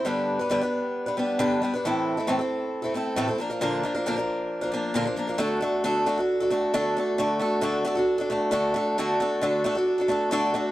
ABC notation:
X:1
M:4/4
L:1/16
Q:1/4=134
K:Dmix
V:1 name="Steel-string acoustic guitar"
[G,,D,G,B,DB]3 [G,B,DB] [G,,D,G,B,DB] [G,B,DB]4 [G,B,DB] [G,B,DB]2 [G,,D,G,B,DB]2 [G,B,DB] [G,B,DB] | [A,,E,A,CEA]3 [A,CEA] [A,,E,A,CEA] [A,CEA]4 [A,CEA] [A,CEA]2 [A,,E,A,CEA] [A,CEA] [=F,_B,D_B] [F,B,DB] | [_B,,D,=F,_B,D_B]2 [F,B,DB] [F,B,DB] [B,,D,F,B,DB] [F,B,DB]4 [F,B,DB] [F,B,DB]2 [B,,D,F,B,DB] [F,B,DB] [F,B,DB] [F,B,DB] | [D,A,DFA]2 [A,DFA]2 [D,A,DFA]2 [A,DFA] [DFA]2 [DFA] [A,DFA]2 [D,A,DFA]2 [A,DFA]2 |
[D,A,DFA]2 [A,DFA]2 [D,A,DFA]2 [A,DFA] [DFA]2 [DFA] [A,DFA]2 [D,A,DFA]2 [A,DFA]2 | [D,A,DFA]2 [A,DFA]2 [D,A,DFA]2 [A,DFA] [DFA]2 [DFA] [A,DFA]2 [D,A,DFA]2 [A,DFA]2 |]